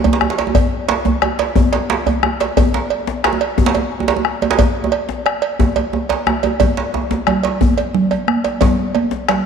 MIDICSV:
0, 0, Header, 1, 4, 480
1, 0, Start_track
1, 0, Tempo, 336134
1, 780, Time_signature, 12, 3, 24, 8
1, 13507, End_track
2, 0, Start_track
2, 0, Title_t, "Bombo"
2, 57, Note_on_c, 9, 37, 30
2, 200, Note_off_c, 9, 37, 0
2, 299, Note_on_c, 9, 37, 100
2, 442, Note_off_c, 9, 37, 0
2, 781, Note_on_c, 9, 37, 33
2, 781, Note_on_c, 9, 43, 111
2, 924, Note_off_c, 9, 37, 0
2, 924, Note_off_c, 9, 43, 0
2, 1261, Note_on_c, 9, 37, 32
2, 1404, Note_off_c, 9, 37, 0
2, 1741, Note_on_c, 9, 37, 101
2, 1884, Note_off_c, 9, 37, 0
2, 2220, Note_on_c, 9, 37, 37
2, 2220, Note_on_c, 9, 43, 110
2, 2363, Note_off_c, 9, 37, 0
2, 2363, Note_off_c, 9, 43, 0
2, 2713, Note_on_c, 9, 37, 31
2, 2856, Note_off_c, 9, 37, 0
2, 2945, Note_on_c, 9, 37, 31
2, 3087, Note_off_c, 9, 37, 0
2, 3185, Note_on_c, 9, 37, 103
2, 3328, Note_off_c, 9, 37, 0
2, 3669, Note_on_c, 9, 37, 38
2, 3669, Note_on_c, 9, 43, 117
2, 3811, Note_off_c, 9, 37, 0
2, 3811, Note_off_c, 9, 43, 0
2, 4629, Note_on_c, 9, 37, 106
2, 4772, Note_off_c, 9, 37, 0
2, 5115, Note_on_c, 9, 37, 30
2, 5115, Note_on_c, 9, 43, 105
2, 5258, Note_off_c, 9, 37, 0
2, 5258, Note_off_c, 9, 43, 0
2, 5597, Note_on_c, 9, 37, 29
2, 5739, Note_off_c, 9, 37, 0
2, 5832, Note_on_c, 9, 37, 28
2, 5975, Note_off_c, 9, 37, 0
2, 6067, Note_on_c, 9, 37, 82
2, 6209, Note_off_c, 9, 37, 0
2, 6550, Note_on_c, 9, 43, 99
2, 6693, Note_off_c, 9, 43, 0
2, 7039, Note_on_c, 9, 37, 30
2, 7182, Note_off_c, 9, 37, 0
2, 7277, Note_on_c, 9, 37, 33
2, 7420, Note_off_c, 9, 37, 0
2, 7516, Note_on_c, 9, 37, 98
2, 7659, Note_off_c, 9, 37, 0
2, 7758, Note_on_c, 9, 37, 29
2, 7901, Note_off_c, 9, 37, 0
2, 7994, Note_on_c, 9, 37, 29
2, 7994, Note_on_c, 9, 43, 90
2, 8137, Note_off_c, 9, 37, 0
2, 8137, Note_off_c, 9, 43, 0
2, 8475, Note_on_c, 9, 37, 27
2, 8618, Note_off_c, 9, 37, 0
2, 8716, Note_on_c, 9, 37, 28
2, 8859, Note_off_c, 9, 37, 0
2, 8953, Note_on_c, 9, 37, 92
2, 9095, Note_off_c, 9, 37, 0
2, 9430, Note_on_c, 9, 37, 33
2, 9430, Note_on_c, 9, 43, 100
2, 9572, Note_off_c, 9, 37, 0
2, 9572, Note_off_c, 9, 43, 0
2, 9912, Note_on_c, 9, 37, 31
2, 10055, Note_off_c, 9, 37, 0
2, 10379, Note_on_c, 9, 37, 107
2, 10522, Note_off_c, 9, 37, 0
2, 10866, Note_on_c, 9, 37, 35
2, 10866, Note_on_c, 9, 43, 99
2, 11009, Note_off_c, 9, 37, 0
2, 11009, Note_off_c, 9, 43, 0
2, 11345, Note_on_c, 9, 37, 30
2, 11488, Note_off_c, 9, 37, 0
2, 11589, Note_on_c, 9, 37, 33
2, 11732, Note_off_c, 9, 37, 0
2, 11825, Note_on_c, 9, 37, 98
2, 11968, Note_off_c, 9, 37, 0
2, 12304, Note_on_c, 9, 37, 37
2, 12304, Note_on_c, 9, 43, 112
2, 12447, Note_off_c, 9, 37, 0
2, 12447, Note_off_c, 9, 43, 0
2, 12784, Note_on_c, 9, 37, 33
2, 12926, Note_off_c, 9, 37, 0
2, 13259, Note_on_c, 9, 37, 117
2, 13402, Note_off_c, 9, 37, 0
2, 13507, End_track
3, 0, Start_track
3, 0, Title_t, "Djembe"
3, 59, Note_on_c, 9, 63, 54
3, 68, Note_on_c, 9, 64, 107
3, 185, Note_on_c, 9, 62, 80
3, 202, Note_off_c, 9, 63, 0
3, 211, Note_off_c, 9, 64, 0
3, 309, Note_on_c, 9, 63, 82
3, 328, Note_off_c, 9, 62, 0
3, 430, Note_on_c, 9, 62, 75
3, 452, Note_off_c, 9, 63, 0
3, 547, Note_off_c, 9, 62, 0
3, 547, Note_on_c, 9, 62, 62
3, 552, Note_off_c, 9, 62, 0
3, 552, Note_on_c, 9, 62, 75
3, 672, Note_on_c, 9, 63, 78
3, 695, Note_off_c, 9, 62, 0
3, 782, Note_off_c, 9, 63, 0
3, 782, Note_on_c, 9, 63, 86
3, 782, Note_on_c, 9, 64, 91
3, 925, Note_off_c, 9, 63, 0
3, 925, Note_off_c, 9, 64, 0
3, 1266, Note_on_c, 9, 62, 99
3, 1409, Note_off_c, 9, 62, 0
3, 1499, Note_on_c, 9, 62, 58
3, 1499, Note_on_c, 9, 63, 58
3, 1506, Note_on_c, 9, 64, 87
3, 1642, Note_off_c, 9, 62, 0
3, 1642, Note_off_c, 9, 63, 0
3, 1649, Note_off_c, 9, 64, 0
3, 1746, Note_on_c, 9, 63, 82
3, 1889, Note_off_c, 9, 63, 0
3, 1983, Note_on_c, 9, 62, 83
3, 2126, Note_off_c, 9, 62, 0
3, 2222, Note_on_c, 9, 63, 92
3, 2222, Note_on_c, 9, 64, 88
3, 2229, Note_off_c, 9, 63, 0
3, 2229, Note_on_c, 9, 63, 84
3, 2364, Note_off_c, 9, 64, 0
3, 2371, Note_off_c, 9, 63, 0
3, 2463, Note_on_c, 9, 62, 70
3, 2468, Note_off_c, 9, 62, 0
3, 2468, Note_on_c, 9, 62, 75
3, 2610, Note_off_c, 9, 62, 0
3, 2710, Note_on_c, 9, 62, 99
3, 2853, Note_off_c, 9, 62, 0
3, 2948, Note_on_c, 9, 64, 81
3, 2952, Note_on_c, 9, 63, 68
3, 3090, Note_off_c, 9, 64, 0
3, 3095, Note_off_c, 9, 63, 0
3, 3185, Note_on_c, 9, 63, 89
3, 3328, Note_off_c, 9, 63, 0
3, 3432, Note_on_c, 9, 62, 74
3, 3439, Note_off_c, 9, 62, 0
3, 3439, Note_on_c, 9, 62, 73
3, 3582, Note_off_c, 9, 62, 0
3, 3672, Note_on_c, 9, 63, 96
3, 3672, Note_on_c, 9, 64, 101
3, 3673, Note_off_c, 9, 63, 0
3, 3673, Note_on_c, 9, 63, 84
3, 3814, Note_off_c, 9, 64, 0
3, 3816, Note_off_c, 9, 63, 0
3, 3916, Note_on_c, 9, 62, 84
3, 4059, Note_off_c, 9, 62, 0
3, 4390, Note_on_c, 9, 62, 74
3, 4390, Note_on_c, 9, 63, 67
3, 4533, Note_off_c, 9, 62, 0
3, 4533, Note_off_c, 9, 63, 0
3, 4633, Note_on_c, 9, 62, 112
3, 4750, Note_on_c, 9, 63, 79
3, 4776, Note_off_c, 9, 62, 0
3, 4892, Note_off_c, 9, 63, 0
3, 5109, Note_on_c, 9, 63, 91
3, 5109, Note_on_c, 9, 64, 95
3, 5111, Note_off_c, 9, 63, 0
3, 5111, Note_on_c, 9, 63, 82
3, 5231, Note_on_c, 9, 62, 106
3, 5252, Note_off_c, 9, 64, 0
3, 5254, Note_off_c, 9, 63, 0
3, 5351, Note_off_c, 9, 62, 0
3, 5351, Note_on_c, 9, 62, 65
3, 5356, Note_on_c, 9, 63, 75
3, 5494, Note_off_c, 9, 62, 0
3, 5498, Note_off_c, 9, 63, 0
3, 5715, Note_on_c, 9, 63, 85
3, 5826, Note_on_c, 9, 62, 96
3, 5829, Note_off_c, 9, 63, 0
3, 5829, Note_on_c, 9, 63, 64
3, 5947, Note_off_c, 9, 63, 0
3, 5947, Note_on_c, 9, 63, 76
3, 5969, Note_off_c, 9, 62, 0
3, 6090, Note_off_c, 9, 63, 0
3, 6312, Note_on_c, 9, 63, 81
3, 6314, Note_on_c, 9, 62, 57
3, 6434, Note_off_c, 9, 62, 0
3, 6434, Note_on_c, 9, 62, 102
3, 6455, Note_off_c, 9, 63, 0
3, 6549, Note_on_c, 9, 63, 81
3, 6549, Note_on_c, 9, 64, 80
3, 6556, Note_off_c, 9, 63, 0
3, 6556, Note_on_c, 9, 63, 82
3, 6577, Note_off_c, 9, 62, 0
3, 6692, Note_off_c, 9, 64, 0
3, 6698, Note_off_c, 9, 63, 0
3, 6910, Note_on_c, 9, 63, 82
3, 7053, Note_off_c, 9, 63, 0
3, 7264, Note_on_c, 9, 62, 59
3, 7264, Note_on_c, 9, 63, 59
3, 7407, Note_off_c, 9, 62, 0
3, 7407, Note_off_c, 9, 63, 0
3, 7989, Note_on_c, 9, 62, 25
3, 7989, Note_on_c, 9, 63, 75
3, 7989, Note_on_c, 9, 64, 81
3, 7993, Note_off_c, 9, 63, 0
3, 7993, Note_on_c, 9, 63, 104
3, 8132, Note_off_c, 9, 62, 0
3, 8132, Note_off_c, 9, 64, 0
3, 8136, Note_off_c, 9, 63, 0
3, 8229, Note_on_c, 9, 62, 56
3, 8230, Note_on_c, 9, 63, 69
3, 8372, Note_off_c, 9, 62, 0
3, 8373, Note_off_c, 9, 63, 0
3, 8469, Note_on_c, 9, 62, 23
3, 8470, Note_on_c, 9, 63, 75
3, 8612, Note_off_c, 9, 62, 0
3, 8613, Note_off_c, 9, 63, 0
3, 8708, Note_on_c, 9, 63, 55
3, 8710, Note_on_c, 9, 62, 76
3, 8851, Note_off_c, 9, 63, 0
3, 8852, Note_off_c, 9, 62, 0
3, 8949, Note_on_c, 9, 63, 109
3, 9092, Note_off_c, 9, 63, 0
3, 9189, Note_on_c, 9, 62, 60
3, 9192, Note_on_c, 9, 63, 84
3, 9332, Note_off_c, 9, 62, 0
3, 9335, Note_off_c, 9, 63, 0
3, 9426, Note_on_c, 9, 63, 78
3, 9426, Note_on_c, 9, 64, 78
3, 9437, Note_off_c, 9, 63, 0
3, 9437, Note_on_c, 9, 63, 81
3, 9569, Note_off_c, 9, 64, 0
3, 9579, Note_off_c, 9, 63, 0
3, 9672, Note_on_c, 9, 62, 80
3, 9814, Note_off_c, 9, 62, 0
3, 9912, Note_on_c, 9, 63, 94
3, 10055, Note_off_c, 9, 63, 0
3, 10149, Note_on_c, 9, 63, 83
3, 10151, Note_off_c, 9, 63, 0
3, 10151, Note_on_c, 9, 62, 60
3, 10151, Note_on_c, 9, 63, 62
3, 10294, Note_off_c, 9, 62, 0
3, 10294, Note_off_c, 9, 63, 0
3, 10392, Note_on_c, 9, 63, 85
3, 10535, Note_off_c, 9, 63, 0
3, 10633, Note_on_c, 9, 62, 74
3, 10776, Note_off_c, 9, 62, 0
3, 10868, Note_on_c, 9, 63, 82
3, 10868, Note_on_c, 9, 64, 92
3, 11010, Note_off_c, 9, 63, 0
3, 11010, Note_off_c, 9, 64, 0
3, 11111, Note_on_c, 9, 62, 63
3, 11254, Note_off_c, 9, 62, 0
3, 11585, Note_on_c, 9, 63, 58
3, 11728, Note_off_c, 9, 63, 0
3, 12062, Note_on_c, 9, 62, 69
3, 12205, Note_off_c, 9, 62, 0
3, 12297, Note_on_c, 9, 63, 94
3, 12297, Note_on_c, 9, 64, 94
3, 12306, Note_on_c, 9, 62, 80
3, 12440, Note_off_c, 9, 63, 0
3, 12440, Note_off_c, 9, 64, 0
3, 12449, Note_off_c, 9, 62, 0
3, 13012, Note_on_c, 9, 62, 62
3, 13012, Note_on_c, 9, 63, 60
3, 13154, Note_off_c, 9, 62, 0
3, 13154, Note_off_c, 9, 63, 0
3, 13263, Note_on_c, 9, 62, 84
3, 13405, Note_off_c, 9, 62, 0
3, 13507, End_track
4, 0, Start_track
4, 0, Title_t, "Drums"
4, 61, Note_on_c, 9, 56, 48
4, 204, Note_off_c, 9, 56, 0
4, 547, Note_on_c, 9, 56, 46
4, 690, Note_off_c, 9, 56, 0
4, 784, Note_on_c, 9, 56, 61
4, 927, Note_off_c, 9, 56, 0
4, 1263, Note_on_c, 9, 56, 51
4, 1406, Note_off_c, 9, 56, 0
4, 1745, Note_on_c, 9, 56, 50
4, 1887, Note_off_c, 9, 56, 0
4, 1990, Note_on_c, 9, 56, 58
4, 2132, Note_off_c, 9, 56, 0
4, 2465, Note_on_c, 9, 56, 52
4, 2608, Note_off_c, 9, 56, 0
4, 2951, Note_on_c, 9, 56, 48
4, 3094, Note_off_c, 9, 56, 0
4, 3439, Note_on_c, 9, 56, 55
4, 3582, Note_off_c, 9, 56, 0
4, 3671, Note_on_c, 9, 56, 61
4, 3813, Note_off_c, 9, 56, 0
4, 4146, Note_on_c, 9, 56, 49
4, 4289, Note_off_c, 9, 56, 0
4, 4868, Note_on_c, 9, 56, 60
4, 5011, Note_off_c, 9, 56, 0
4, 5348, Note_on_c, 9, 56, 51
4, 5491, Note_off_c, 9, 56, 0
4, 5828, Note_on_c, 9, 56, 56
4, 5970, Note_off_c, 9, 56, 0
4, 6315, Note_on_c, 9, 56, 51
4, 6458, Note_off_c, 9, 56, 0
4, 6549, Note_on_c, 9, 56, 69
4, 6692, Note_off_c, 9, 56, 0
4, 7024, Note_on_c, 9, 56, 55
4, 7167, Note_off_c, 9, 56, 0
4, 7507, Note_on_c, 9, 56, 50
4, 7650, Note_off_c, 9, 56, 0
4, 7740, Note_on_c, 9, 56, 61
4, 7882, Note_off_c, 9, 56, 0
4, 8224, Note_on_c, 9, 56, 53
4, 8367, Note_off_c, 9, 56, 0
4, 8702, Note_on_c, 9, 56, 52
4, 8845, Note_off_c, 9, 56, 0
4, 9183, Note_on_c, 9, 56, 51
4, 9326, Note_off_c, 9, 56, 0
4, 9421, Note_on_c, 9, 56, 68
4, 9429, Note_on_c, 9, 64, 68
4, 9563, Note_off_c, 9, 56, 0
4, 9571, Note_off_c, 9, 64, 0
4, 9910, Note_on_c, 9, 63, 80
4, 10053, Note_off_c, 9, 63, 0
4, 10154, Note_on_c, 9, 63, 21
4, 10297, Note_off_c, 9, 63, 0
4, 10384, Note_on_c, 9, 56, 48
4, 10384, Note_on_c, 9, 64, 71
4, 10527, Note_off_c, 9, 56, 0
4, 10527, Note_off_c, 9, 64, 0
4, 10616, Note_on_c, 9, 56, 57
4, 10759, Note_off_c, 9, 56, 0
4, 10865, Note_on_c, 9, 63, 81
4, 11007, Note_off_c, 9, 63, 0
4, 11103, Note_on_c, 9, 56, 49
4, 11246, Note_off_c, 9, 56, 0
4, 11345, Note_on_c, 9, 64, 82
4, 11487, Note_off_c, 9, 64, 0
4, 11580, Note_on_c, 9, 56, 47
4, 11723, Note_off_c, 9, 56, 0
4, 11821, Note_on_c, 9, 63, 68
4, 11964, Note_off_c, 9, 63, 0
4, 12058, Note_on_c, 9, 56, 47
4, 12201, Note_off_c, 9, 56, 0
4, 12291, Note_on_c, 9, 56, 56
4, 12305, Note_on_c, 9, 64, 69
4, 12434, Note_off_c, 9, 56, 0
4, 12448, Note_off_c, 9, 64, 0
4, 12775, Note_on_c, 9, 56, 49
4, 12787, Note_on_c, 9, 63, 77
4, 12918, Note_off_c, 9, 56, 0
4, 12930, Note_off_c, 9, 63, 0
4, 13030, Note_on_c, 9, 63, 22
4, 13173, Note_off_c, 9, 63, 0
4, 13266, Note_on_c, 9, 64, 65
4, 13267, Note_on_c, 9, 56, 53
4, 13409, Note_off_c, 9, 56, 0
4, 13409, Note_off_c, 9, 64, 0
4, 13507, End_track
0, 0, End_of_file